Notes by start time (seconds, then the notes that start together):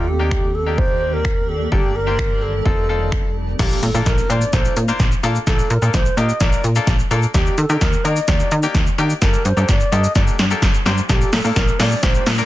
Already playing: D#2 D#3 A#3 G4 D5
0.08 G4
0.19 A#3 D4 D#4 G4
0.31 finger snap, kick
0.55 A4
0.66 A#3 D4 D#4 G4
0.78 C5, kick
1.13 A#4
1.25 finger snap, kick
1.49 A4
1.72 G1 A#3 D4 G4 A4 A5, kick
1.96 A#4
2.07 A#3 D4 G4 C5
2.19 finger snap, kick
2.42 A4
2.65 F1 C4 D#4 F4 A4, kick
2.89 C4 D#4 F4 A4
3.12 finger snap, kick
3.59 A#1 A#3 D4 F4 G4 A4, kick, snare, closed hi-hat, crash, impact, shaker
3.71 shaker
3.83 A#2 A4, closed hi-hat, shaker
3.94 A#2 A#3 D4 F4 A4, shaker
4.06 A#1 A#4, kick, snare, closed hi-hat, shaker
4.18 shaker
4.29 A#2 A#3 D4 F4 C5 D5, closed hi-hat, shaker
4.42 shaker
4.53 A#1 A#3 D4 F4 A4 C5, kick, snare, closed hi-hat, shaker
4.65 shaker
4.76 A#2, closed hi-hat, shaker
4.88 A#3 D4 F4 C5, shaker
5.00 A#1, kick, snare, closed hi-hat, shaker
5.12 shaker
5.23 A#2 A#3 D4 F4 A4, closed hi-hat, shaker
5.35 shaker
5.47 A#1 A#3 D4 F4 A4, kick, snare, closed hi-hat, shaker
5.59 shaker
5.70 A#2 A#4, closed hi-hat, shaker
5.82 A#2 A#3 D4 F4 A4, shaker
5.94 A#1 C5, kick, snare, closed hi-hat, shaker
6.06 shaker
6.17 A#2 A#3 D4 F4 G4 D#5, closed hi-hat, shaker
6.29 shaker
6.40 A#1 A#3 D4 F4 A#4 D5, kick, snare, closed hi-hat, shaker
6.52 shaker
6.64 A#2, closed hi-hat, shaker
6.76 A#3 D4 F4 A4, shaker
6.87 A#1, kick, snare, closed hi-hat, shaker
6.99 shaker
7.11 A#2 A#3 D4 F4 A4, closed hi-hat, shaker
7.23 shaker
7.34 D#2 A#3 D4 D#4 G4, kick, snare, closed hi-hat, shaker
7.46 shaker
7.58 D#3 A4, closed hi-hat, shaker
7.69 D#3 A#3 D4 D#4 G4, shaker
7.81 D#2 A#4, kick, snare, closed hi-hat, shaker
7.93 shaker
8.04 D#3 A#3 D4 D#4 A#4 D#5, closed hi-hat, shaker
8.16 shaker
8.28 D#2 A#3 D4 D#4 G4 D5, kick, snare, closed hi-hat, shaker
8.40 shaker
8.51 D#3, closed hi-hat, shaker
8.63 A#3 D4 D#4 G4, shaker
8.75 D#2, kick, snare, closed hi-hat, shaker
8.87 shaker
8.98 D#3 A#3 D4 D#4 G4, closed hi-hat, shaker
9.10 shaker
9.22 G1 A#3 D4 G4 A4 A#4, kick, snare, closed hi-hat, shaker
9.34 shaker
9.45 G2 C5, closed hi-hat, shaker
9.57 G2 A#3 D4 G4 A4, shaker
9.68 G1 D5, kick, snare, closed hi-hat, shaker
9.80 shaker
9.92 G2 A#3 D4 G4 A4 D#5, closed hi-hat, shaker
10.04 shaker
10.15 G1 A#3 D4 G4 A4 D5, kick, snare, closed hi-hat, shaker
10.27 shaker
10.39 G2, snare, closed hi-hat, shaker
10.50 A#3 D4 G4 A4, shaker
10.62 G1, kick, snare, closed hi-hat, shaker
10.74 shaker
10.86 G2 A#3 D4 G4 C5, snare, closed hi-hat, shaker
10.98 shaker
11.09 A#1 A3 A#3 D4 F4 G4 A4, kick, snare, closed hi-hat, riser, shaker
11.21 shaker
11.33 A#2 A4, snare, open hi-hat, shaker
11.44 A#2 A#3 D4 F4 A4, shaker
11.56 A#1 A#4, kick, snare, closed hi-hat, shaker
11.68 shaker
11.79 A#2 A#3 D4 F4 A4 D5, snare, open hi-hat, shaker
11.91 shaker
12.03 A#1 A#3 D4 F4 G4 C5, kick, snare, closed hi-hat, shaker
12.15 shaker
12.26 A#2, snare, open hi-hat, shaker
12.38 A#3 D4 F4 A#4, shaker